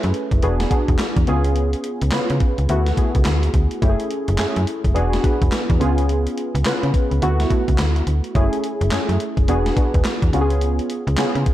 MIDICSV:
0, 0, Header, 1, 4, 480
1, 0, Start_track
1, 0, Tempo, 566038
1, 1320, Time_signature, 4, 2, 24, 8
1, 9785, End_track
2, 0, Start_track
2, 0, Title_t, "Synth keys"
2, 0, Program_c, 0, 88
2, 0, Control_c, 0, 64, 127
2, 0, Note_on_c, 0, 57, 76
2, 0, Note_on_c, 0, 61, 70
2, 0, Note_on_c, 0, 64, 67
2, 0, Note_on_c, 0, 68, 93
2, 0, Note_on_c, 0, 71, 81
2, 359, Note_off_c, 0, 57, 0
2, 360, Note_off_c, 0, 61, 0
2, 362, Note_off_c, 0, 64, 0
2, 362, Note_on_c, 0, 59, 86
2, 364, Note_off_c, 0, 71, 0
2, 364, Note_on_c, 0, 62, 78
2, 367, Note_on_c, 0, 66, 76
2, 371, Note_off_c, 0, 68, 0
2, 371, Note_on_c, 0, 68, 91
2, 372, Control_c, 0, 64, 0
2, 514, Control_c, 0, 64, 127
2, 588, Note_off_c, 0, 59, 0
2, 591, Note_off_c, 0, 62, 0
2, 593, Note_off_c, 0, 66, 0
2, 595, Note_off_c, 0, 68, 0
2, 599, Note_on_c, 0, 59, 76
2, 605, Note_on_c, 0, 62, 65
2, 608, Note_on_c, 0, 66, 67
2, 609, Note_on_c, 0, 68, 78
2, 1072, Note_off_c, 0, 59, 0
2, 1082, Note_off_c, 0, 68, 0
2, 1082, Note_on_c, 0, 59, 83
2, 1083, Note_off_c, 0, 62, 0
2, 1084, Note_off_c, 0, 66, 0
2, 1085, Note_on_c, 0, 61, 81
2, 1090, Note_on_c, 0, 65, 78
2, 1092, Control_c, 0, 64, 0
2, 1093, Note_on_c, 0, 68, 99
2, 1260, Control_c, 0, 64, 127
2, 1768, Note_off_c, 0, 59, 0
2, 1770, Note_off_c, 0, 61, 0
2, 1772, Note_off_c, 0, 65, 0
2, 1774, Note_off_c, 0, 68, 0
2, 1804, Note_on_c, 0, 59, 76
2, 1806, Note_on_c, 0, 61, 65
2, 1812, Note_on_c, 0, 65, 70
2, 1814, Note_on_c, 0, 71, 82
2, 2276, Note_off_c, 0, 59, 0
2, 2283, Note_off_c, 0, 61, 0
2, 2283, Note_on_c, 0, 57, 82
2, 2286, Note_off_c, 0, 65, 0
2, 2286, Note_on_c, 0, 59, 80
2, 2287, Note_off_c, 0, 71, 0
2, 2289, Note_on_c, 0, 64, 83
2, 2292, Control_c, 0, 64, 0
2, 2293, Note_on_c, 0, 66, 93
2, 2427, Control_c, 0, 64, 127
2, 2511, Note_off_c, 0, 57, 0
2, 2512, Note_off_c, 0, 59, 0
2, 2514, Note_off_c, 0, 64, 0
2, 2516, Note_off_c, 0, 66, 0
2, 2521, Note_on_c, 0, 57, 65
2, 2523, Note_on_c, 0, 59, 64
2, 2526, Note_on_c, 0, 64, 66
2, 2530, Note_on_c, 0, 68, 75
2, 3208, Note_off_c, 0, 57, 0
2, 3209, Note_off_c, 0, 59, 0
2, 3211, Note_off_c, 0, 64, 0
2, 3212, Note_off_c, 0, 68, 0
2, 3238, Note_on_c, 0, 57, 81
2, 3240, Note_on_c, 0, 61, 74
2, 3241, Note_on_c, 0, 64, 74
2, 3248, Note_on_c, 0, 67, 74
2, 3250, Control_c, 0, 64, 0
2, 3302, Note_on_c, 0, 68, 91
2, 3312, Note_off_c, 0, 67, 0
2, 3402, Control_c, 0, 64, 127
2, 3697, Note_off_c, 0, 57, 0
2, 3698, Note_off_c, 0, 61, 0
2, 3699, Note_off_c, 0, 64, 0
2, 3716, Note_on_c, 0, 57, 81
2, 3717, Note_off_c, 0, 68, 0
2, 3721, Note_on_c, 0, 61, 71
2, 3725, Note_on_c, 0, 64, 68
2, 3727, Note_on_c, 0, 68, 84
2, 4191, Note_off_c, 0, 68, 0
2, 4191, Note_on_c, 0, 59, 81
2, 4196, Note_on_c, 0, 62, 81
2, 4198, Note_off_c, 0, 57, 0
2, 4201, Note_off_c, 0, 61, 0
2, 4201, Note_on_c, 0, 68, 97
2, 4202, Note_on_c, 0, 66, 84
2, 4203, Note_off_c, 0, 64, 0
2, 4210, Control_c, 0, 64, 0
2, 4353, Control_c, 0, 64, 127
2, 4423, Note_off_c, 0, 59, 0
2, 4427, Note_off_c, 0, 62, 0
2, 4430, Note_off_c, 0, 66, 0
2, 4430, Note_off_c, 0, 68, 0
2, 4433, Note_on_c, 0, 59, 68
2, 4438, Note_on_c, 0, 62, 63
2, 4441, Note_on_c, 0, 66, 66
2, 4446, Note_on_c, 0, 71, 76
2, 4908, Note_off_c, 0, 59, 0
2, 4918, Note_on_c, 0, 59, 92
2, 4919, Note_off_c, 0, 62, 0
2, 4919, Note_on_c, 0, 61, 85
2, 4921, Note_off_c, 0, 66, 0
2, 4923, Note_off_c, 0, 71, 0
2, 4924, Note_on_c, 0, 65, 86
2, 4929, Note_on_c, 0, 68, 98
2, 4930, Control_c, 0, 64, 0
2, 5055, Control_c, 0, 64, 127
2, 5606, Note_off_c, 0, 59, 0
2, 5607, Note_off_c, 0, 61, 0
2, 5610, Note_off_c, 0, 65, 0
2, 5612, Note_off_c, 0, 68, 0
2, 5640, Note_on_c, 0, 59, 78
2, 5646, Note_on_c, 0, 61, 72
2, 5650, Note_on_c, 0, 65, 69
2, 5651, Note_on_c, 0, 71, 87
2, 6115, Note_off_c, 0, 59, 0
2, 6121, Note_on_c, 0, 57, 85
2, 6123, Note_off_c, 0, 61, 0
2, 6125, Note_off_c, 0, 65, 0
2, 6125, Note_on_c, 0, 59, 78
2, 6126, Note_off_c, 0, 71, 0
2, 6128, Note_on_c, 0, 64, 76
2, 6131, Control_c, 0, 64, 0
2, 6131, Note_on_c, 0, 66, 103
2, 6295, Control_c, 0, 64, 127
2, 6350, Note_off_c, 0, 57, 0
2, 6352, Note_off_c, 0, 59, 0
2, 6353, Note_off_c, 0, 64, 0
2, 6355, Note_off_c, 0, 66, 0
2, 6359, Note_on_c, 0, 57, 71
2, 6362, Note_on_c, 0, 59, 62
2, 6366, Note_on_c, 0, 64, 63
2, 6370, Note_on_c, 0, 66, 81
2, 7047, Note_off_c, 0, 57, 0
2, 7049, Note_off_c, 0, 59, 0
2, 7050, Note_off_c, 0, 64, 0
2, 7052, Note_off_c, 0, 66, 0
2, 7079, Note_on_c, 0, 57, 80
2, 7081, Note_on_c, 0, 61, 72
2, 7084, Note_on_c, 0, 64, 74
2, 7090, Control_c, 0, 64, 0
2, 7090, Note_on_c, 0, 68, 93
2, 7245, Control_c, 0, 64, 127
2, 7538, Note_off_c, 0, 57, 0
2, 7539, Note_off_c, 0, 61, 0
2, 7541, Note_off_c, 0, 64, 0
2, 7543, Note_off_c, 0, 68, 0
2, 7561, Note_on_c, 0, 57, 76
2, 7564, Note_on_c, 0, 61, 68
2, 7568, Note_on_c, 0, 64, 64
2, 7572, Note_on_c, 0, 68, 87
2, 8041, Note_off_c, 0, 57, 0
2, 8041, Note_on_c, 0, 59, 92
2, 8042, Note_off_c, 0, 61, 0
2, 8042, Note_off_c, 0, 68, 0
2, 8044, Note_off_c, 0, 64, 0
2, 8045, Note_on_c, 0, 62, 81
2, 8047, Note_on_c, 0, 66, 77
2, 8052, Control_c, 0, 64, 0
2, 8052, Note_on_c, 0, 68, 96
2, 8222, Control_c, 0, 64, 127
2, 8270, Note_off_c, 0, 59, 0
2, 8272, Note_off_c, 0, 62, 0
2, 8273, Note_off_c, 0, 66, 0
2, 8275, Note_off_c, 0, 68, 0
2, 8278, Note_on_c, 0, 59, 67
2, 8280, Note_on_c, 0, 62, 70
2, 8286, Note_on_c, 0, 66, 65
2, 8286, Note_on_c, 0, 71, 72
2, 8753, Note_off_c, 0, 59, 0
2, 8760, Note_off_c, 0, 62, 0
2, 8763, Note_off_c, 0, 66, 0
2, 8763, Note_off_c, 0, 71, 0
2, 8763, Note_on_c, 0, 59, 83
2, 8767, Note_on_c, 0, 61, 81
2, 8768, Note_on_c, 0, 65, 78
2, 8772, Note_on_c, 0, 66, 81
2, 8773, Control_c, 0, 64, 0
2, 8829, Note_on_c, 0, 68, 99
2, 8834, Note_off_c, 0, 66, 0
2, 8911, Control_c, 0, 64, 127
2, 9449, Note_off_c, 0, 59, 0
2, 9451, Note_off_c, 0, 61, 0
2, 9452, Note_off_c, 0, 65, 0
2, 9475, Note_off_c, 0, 68, 0
2, 9477, Note_on_c, 0, 59, 79
2, 9480, Note_on_c, 0, 61, 65
2, 9483, Note_on_c, 0, 65, 75
2, 9485, Note_on_c, 0, 68, 85
2, 9785, Note_off_c, 0, 59, 0
2, 9785, Note_off_c, 0, 61, 0
2, 9785, Note_off_c, 0, 65, 0
2, 9785, Note_off_c, 0, 68, 0
2, 9785, End_track
3, 0, Start_track
3, 0, Title_t, "FM bass"
3, 0, Program_c, 1, 39
3, 34, Note_on_c, 1, 42, 98
3, 108, Note_off_c, 1, 42, 0
3, 269, Note_on_c, 1, 30, 86
3, 345, Note_off_c, 1, 30, 0
3, 363, Note_on_c, 1, 28, 98
3, 561, Note_off_c, 1, 28, 0
3, 751, Note_on_c, 1, 28, 102
3, 826, Note_off_c, 1, 28, 0
3, 988, Note_on_c, 1, 40, 92
3, 1065, Note_off_c, 1, 40, 0
3, 1089, Note_on_c, 1, 37, 89
3, 1483, Note_off_c, 1, 37, 0
3, 1712, Note_on_c, 1, 37, 87
3, 1787, Note_off_c, 1, 37, 0
3, 1952, Note_on_c, 1, 49, 89
3, 2027, Note_off_c, 1, 49, 0
3, 2192, Note_on_c, 1, 37, 77
3, 2267, Note_off_c, 1, 37, 0
3, 2284, Note_on_c, 1, 38, 96
3, 2481, Note_off_c, 1, 38, 0
3, 2673, Note_on_c, 1, 37, 83
3, 2747, Note_off_c, 1, 37, 0
3, 2766, Note_on_c, 1, 38, 89
3, 2963, Note_off_c, 1, 38, 0
3, 3003, Note_on_c, 1, 38, 84
3, 3124, Note_off_c, 1, 38, 0
3, 3244, Note_on_c, 1, 30, 96
3, 3365, Note_off_c, 1, 30, 0
3, 3632, Note_on_c, 1, 30, 98
3, 3707, Note_off_c, 1, 30, 0
3, 3726, Note_on_c, 1, 42, 52
3, 3784, Note_off_c, 1, 42, 0
3, 3872, Note_on_c, 1, 42, 100
3, 3947, Note_off_c, 1, 42, 0
3, 4109, Note_on_c, 1, 30, 81
3, 4185, Note_off_c, 1, 30, 0
3, 4201, Note_on_c, 1, 28, 95
3, 4400, Note_off_c, 1, 28, 0
3, 4594, Note_on_c, 1, 28, 107
3, 4668, Note_off_c, 1, 28, 0
3, 4832, Note_on_c, 1, 40, 97
3, 4907, Note_off_c, 1, 40, 0
3, 4923, Note_on_c, 1, 37, 86
3, 5320, Note_off_c, 1, 37, 0
3, 5552, Note_on_c, 1, 37, 93
3, 5627, Note_off_c, 1, 37, 0
3, 5794, Note_on_c, 1, 49, 86
3, 5868, Note_off_c, 1, 49, 0
3, 6033, Note_on_c, 1, 37, 70
3, 6108, Note_off_c, 1, 37, 0
3, 6126, Note_on_c, 1, 38, 101
3, 6323, Note_off_c, 1, 38, 0
3, 6516, Note_on_c, 1, 37, 86
3, 6589, Note_off_c, 1, 37, 0
3, 6605, Note_on_c, 1, 38, 85
3, 6802, Note_off_c, 1, 38, 0
3, 6843, Note_on_c, 1, 38, 79
3, 6964, Note_off_c, 1, 38, 0
3, 7082, Note_on_c, 1, 30, 98
3, 7204, Note_off_c, 1, 30, 0
3, 7471, Note_on_c, 1, 30, 97
3, 7546, Note_off_c, 1, 30, 0
3, 7707, Note_on_c, 1, 42, 92
3, 7784, Note_off_c, 1, 42, 0
3, 7949, Note_on_c, 1, 30, 76
3, 8025, Note_off_c, 1, 30, 0
3, 8042, Note_on_c, 1, 28, 101
3, 8240, Note_off_c, 1, 28, 0
3, 8435, Note_on_c, 1, 28, 98
3, 8508, Note_off_c, 1, 28, 0
3, 8671, Note_on_c, 1, 40, 88
3, 8746, Note_off_c, 1, 40, 0
3, 8759, Note_on_c, 1, 37, 85
3, 9157, Note_off_c, 1, 37, 0
3, 9388, Note_on_c, 1, 37, 97
3, 9465, Note_off_c, 1, 37, 0
3, 9627, Note_on_c, 1, 49, 91
3, 9704, Note_off_c, 1, 49, 0
3, 9785, End_track
4, 0, Start_track
4, 0, Title_t, "Drums"
4, 28, Note_on_c, 9, 42, 49
4, 113, Note_off_c, 9, 42, 0
4, 119, Note_on_c, 9, 42, 65
4, 204, Note_off_c, 9, 42, 0
4, 266, Note_on_c, 9, 36, 78
4, 268, Note_on_c, 9, 42, 43
4, 351, Note_off_c, 9, 36, 0
4, 353, Note_off_c, 9, 42, 0
4, 361, Note_on_c, 9, 42, 78
4, 445, Note_off_c, 9, 42, 0
4, 509, Note_on_c, 9, 38, 71
4, 509, Note_on_c, 9, 42, 52
4, 594, Note_off_c, 9, 38, 0
4, 594, Note_off_c, 9, 42, 0
4, 600, Note_on_c, 9, 36, 82
4, 601, Note_on_c, 9, 42, 78
4, 685, Note_off_c, 9, 36, 0
4, 686, Note_off_c, 9, 42, 0
4, 749, Note_on_c, 9, 42, 58
4, 750, Note_on_c, 9, 36, 85
4, 834, Note_off_c, 9, 42, 0
4, 835, Note_off_c, 9, 36, 0
4, 836, Note_on_c, 9, 39, 85
4, 839, Note_on_c, 9, 38, 110
4, 840, Note_on_c, 9, 42, 66
4, 921, Note_off_c, 9, 39, 0
4, 924, Note_off_c, 9, 38, 0
4, 924, Note_off_c, 9, 42, 0
4, 988, Note_on_c, 9, 36, 94
4, 988, Note_on_c, 9, 42, 56
4, 1073, Note_off_c, 9, 36, 0
4, 1073, Note_off_c, 9, 42, 0
4, 1079, Note_on_c, 9, 42, 69
4, 1164, Note_off_c, 9, 42, 0
4, 1225, Note_on_c, 9, 42, 49
4, 1310, Note_off_c, 9, 42, 0
4, 1320, Note_on_c, 9, 42, 70
4, 1405, Note_off_c, 9, 42, 0
4, 1468, Note_on_c, 9, 42, 51
4, 1553, Note_off_c, 9, 42, 0
4, 1558, Note_on_c, 9, 42, 70
4, 1643, Note_off_c, 9, 42, 0
4, 1709, Note_on_c, 9, 42, 55
4, 1793, Note_off_c, 9, 42, 0
4, 1793, Note_on_c, 9, 39, 82
4, 1795, Note_on_c, 9, 42, 66
4, 1796, Note_on_c, 9, 38, 108
4, 1878, Note_off_c, 9, 39, 0
4, 1880, Note_off_c, 9, 38, 0
4, 1880, Note_off_c, 9, 42, 0
4, 1948, Note_on_c, 9, 42, 50
4, 2033, Note_off_c, 9, 42, 0
4, 2038, Note_on_c, 9, 42, 66
4, 2040, Note_on_c, 9, 36, 88
4, 2123, Note_off_c, 9, 42, 0
4, 2124, Note_off_c, 9, 36, 0
4, 2189, Note_on_c, 9, 42, 46
4, 2273, Note_off_c, 9, 42, 0
4, 2281, Note_on_c, 9, 42, 77
4, 2366, Note_off_c, 9, 42, 0
4, 2429, Note_on_c, 9, 42, 48
4, 2430, Note_on_c, 9, 38, 69
4, 2514, Note_off_c, 9, 38, 0
4, 2514, Note_off_c, 9, 42, 0
4, 2521, Note_on_c, 9, 36, 80
4, 2523, Note_on_c, 9, 42, 83
4, 2605, Note_off_c, 9, 36, 0
4, 2608, Note_off_c, 9, 42, 0
4, 2670, Note_on_c, 9, 42, 58
4, 2671, Note_on_c, 9, 36, 81
4, 2754, Note_off_c, 9, 42, 0
4, 2755, Note_on_c, 9, 39, 85
4, 2756, Note_off_c, 9, 36, 0
4, 2757, Note_on_c, 9, 38, 105
4, 2758, Note_on_c, 9, 42, 69
4, 2840, Note_off_c, 9, 39, 0
4, 2842, Note_off_c, 9, 38, 0
4, 2843, Note_off_c, 9, 42, 0
4, 2909, Note_on_c, 9, 42, 56
4, 2994, Note_off_c, 9, 42, 0
4, 3000, Note_on_c, 9, 36, 81
4, 3000, Note_on_c, 9, 42, 66
4, 3085, Note_off_c, 9, 36, 0
4, 3085, Note_off_c, 9, 42, 0
4, 3146, Note_on_c, 9, 42, 55
4, 3231, Note_off_c, 9, 42, 0
4, 3241, Note_on_c, 9, 36, 115
4, 3242, Note_on_c, 9, 42, 67
4, 3326, Note_off_c, 9, 36, 0
4, 3327, Note_off_c, 9, 42, 0
4, 3389, Note_on_c, 9, 42, 51
4, 3474, Note_off_c, 9, 42, 0
4, 3482, Note_on_c, 9, 42, 76
4, 3566, Note_off_c, 9, 42, 0
4, 3629, Note_on_c, 9, 42, 57
4, 3714, Note_off_c, 9, 42, 0
4, 3716, Note_on_c, 9, 39, 87
4, 3718, Note_on_c, 9, 42, 68
4, 3719, Note_on_c, 9, 38, 109
4, 3801, Note_off_c, 9, 39, 0
4, 3803, Note_off_c, 9, 42, 0
4, 3804, Note_off_c, 9, 38, 0
4, 3869, Note_on_c, 9, 42, 52
4, 3954, Note_off_c, 9, 42, 0
4, 3963, Note_on_c, 9, 42, 68
4, 4047, Note_off_c, 9, 42, 0
4, 4108, Note_on_c, 9, 36, 75
4, 4111, Note_on_c, 9, 42, 48
4, 4193, Note_off_c, 9, 36, 0
4, 4196, Note_off_c, 9, 42, 0
4, 4205, Note_on_c, 9, 42, 79
4, 4289, Note_off_c, 9, 42, 0
4, 4353, Note_on_c, 9, 42, 46
4, 4354, Note_on_c, 9, 38, 66
4, 4438, Note_off_c, 9, 38, 0
4, 4438, Note_off_c, 9, 42, 0
4, 4443, Note_on_c, 9, 36, 88
4, 4445, Note_on_c, 9, 42, 82
4, 4528, Note_off_c, 9, 36, 0
4, 4529, Note_off_c, 9, 42, 0
4, 4593, Note_on_c, 9, 36, 80
4, 4593, Note_on_c, 9, 42, 54
4, 4678, Note_off_c, 9, 36, 0
4, 4678, Note_off_c, 9, 42, 0
4, 4680, Note_on_c, 9, 39, 82
4, 4682, Note_on_c, 9, 38, 105
4, 4683, Note_on_c, 9, 42, 69
4, 4765, Note_off_c, 9, 39, 0
4, 4767, Note_off_c, 9, 38, 0
4, 4768, Note_off_c, 9, 42, 0
4, 4831, Note_on_c, 9, 36, 97
4, 4832, Note_on_c, 9, 42, 54
4, 4916, Note_off_c, 9, 36, 0
4, 4917, Note_off_c, 9, 42, 0
4, 4926, Note_on_c, 9, 42, 67
4, 5011, Note_off_c, 9, 42, 0
4, 5071, Note_on_c, 9, 42, 53
4, 5155, Note_off_c, 9, 42, 0
4, 5167, Note_on_c, 9, 42, 71
4, 5252, Note_off_c, 9, 42, 0
4, 5314, Note_on_c, 9, 42, 53
4, 5399, Note_off_c, 9, 42, 0
4, 5406, Note_on_c, 9, 42, 68
4, 5491, Note_off_c, 9, 42, 0
4, 5557, Note_on_c, 9, 42, 53
4, 5642, Note_off_c, 9, 42, 0
4, 5642, Note_on_c, 9, 39, 89
4, 5644, Note_on_c, 9, 42, 68
4, 5645, Note_on_c, 9, 38, 115
4, 5727, Note_off_c, 9, 39, 0
4, 5729, Note_off_c, 9, 42, 0
4, 5730, Note_off_c, 9, 38, 0
4, 5795, Note_on_c, 9, 42, 50
4, 5880, Note_off_c, 9, 42, 0
4, 5884, Note_on_c, 9, 36, 84
4, 5887, Note_on_c, 9, 42, 67
4, 5969, Note_off_c, 9, 36, 0
4, 5972, Note_off_c, 9, 42, 0
4, 6033, Note_on_c, 9, 42, 45
4, 6118, Note_off_c, 9, 42, 0
4, 6124, Note_on_c, 9, 42, 78
4, 6209, Note_off_c, 9, 42, 0
4, 6274, Note_on_c, 9, 38, 71
4, 6274, Note_on_c, 9, 42, 47
4, 6359, Note_off_c, 9, 38, 0
4, 6359, Note_off_c, 9, 42, 0
4, 6363, Note_on_c, 9, 36, 94
4, 6365, Note_on_c, 9, 42, 81
4, 6448, Note_off_c, 9, 36, 0
4, 6450, Note_off_c, 9, 42, 0
4, 6513, Note_on_c, 9, 36, 79
4, 6515, Note_on_c, 9, 42, 62
4, 6598, Note_off_c, 9, 36, 0
4, 6599, Note_off_c, 9, 42, 0
4, 6600, Note_on_c, 9, 39, 93
4, 6602, Note_on_c, 9, 38, 108
4, 6603, Note_on_c, 9, 42, 67
4, 6684, Note_off_c, 9, 39, 0
4, 6687, Note_off_c, 9, 38, 0
4, 6688, Note_off_c, 9, 42, 0
4, 6752, Note_on_c, 9, 42, 53
4, 6836, Note_off_c, 9, 42, 0
4, 6843, Note_on_c, 9, 42, 67
4, 6928, Note_off_c, 9, 42, 0
4, 6988, Note_on_c, 9, 42, 49
4, 7073, Note_off_c, 9, 42, 0
4, 7082, Note_on_c, 9, 36, 119
4, 7082, Note_on_c, 9, 42, 62
4, 7167, Note_off_c, 9, 36, 0
4, 7167, Note_off_c, 9, 42, 0
4, 7232, Note_on_c, 9, 42, 52
4, 7317, Note_off_c, 9, 42, 0
4, 7324, Note_on_c, 9, 42, 66
4, 7408, Note_off_c, 9, 42, 0
4, 7474, Note_on_c, 9, 42, 51
4, 7558, Note_off_c, 9, 42, 0
4, 7559, Note_on_c, 9, 39, 90
4, 7560, Note_on_c, 9, 42, 75
4, 7561, Note_on_c, 9, 38, 110
4, 7643, Note_off_c, 9, 39, 0
4, 7645, Note_off_c, 9, 42, 0
4, 7646, Note_off_c, 9, 38, 0
4, 7711, Note_on_c, 9, 42, 47
4, 7795, Note_off_c, 9, 42, 0
4, 7803, Note_on_c, 9, 42, 67
4, 7887, Note_off_c, 9, 42, 0
4, 7947, Note_on_c, 9, 36, 83
4, 7949, Note_on_c, 9, 42, 45
4, 8032, Note_off_c, 9, 36, 0
4, 8034, Note_off_c, 9, 42, 0
4, 8041, Note_on_c, 9, 42, 82
4, 8125, Note_off_c, 9, 42, 0
4, 8192, Note_on_c, 9, 38, 64
4, 8192, Note_on_c, 9, 42, 51
4, 8277, Note_off_c, 9, 38, 0
4, 8277, Note_off_c, 9, 42, 0
4, 8282, Note_on_c, 9, 36, 95
4, 8283, Note_on_c, 9, 42, 78
4, 8367, Note_off_c, 9, 36, 0
4, 8368, Note_off_c, 9, 42, 0
4, 8432, Note_on_c, 9, 36, 82
4, 8432, Note_on_c, 9, 42, 57
4, 8517, Note_off_c, 9, 36, 0
4, 8517, Note_off_c, 9, 42, 0
4, 8519, Note_on_c, 9, 39, 86
4, 8522, Note_on_c, 9, 38, 113
4, 8522, Note_on_c, 9, 42, 65
4, 8604, Note_off_c, 9, 39, 0
4, 8607, Note_off_c, 9, 38, 0
4, 8607, Note_off_c, 9, 42, 0
4, 8670, Note_on_c, 9, 36, 88
4, 8670, Note_on_c, 9, 42, 55
4, 8754, Note_off_c, 9, 36, 0
4, 8754, Note_off_c, 9, 42, 0
4, 8762, Note_on_c, 9, 42, 69
4, 8847, Note_off_c, 9, 42, 0
4, 8907, Note_on_c, 9, 42, 51
4, 8992, Note_off_c, 9, 42, 0
4, 9000, Note_on_c, 9, 42, 67
4, 9085, Note_off_c, 9, 42, 0
4, 9151, Note_on_c, 9, 42, 50
4, 9236, Note_off_c, 9, 42, 0
4, 9240, Note_on_c, 9, 42, 67
4, 9325, Note_off_c, 9, 42, 0
4, 9392, Note_on_c, 9, 42, 49
4, 9476, Note_on_c, 9, 39, 91
4, 9477, Note_off_c, 9, 42, 0
4, 9477, Note_on_c, 9, 42, 72
4, 9478, Note_on_c, 9, 38, 103
4, 9561, Note_off_c, 9, 39, 0
4, 9562, Note_off_c, 9, 42, 0
4, 9563, Note_off_c, 9, 38, 0
4, 9629, Note_on_c, 9, 42, 50
4, 9714, Note_off_c, 9, 42, 0
4, 9720, Note_on_c, 9, 42, 68
4, 9721, Note_on_c, 9, 36, 87
4, 9785, Note_off_c, 9, 36, 0
4, 9785, Note_off_c, 9, 42, 0
4, 9785, End_track
0, 0, End_of_file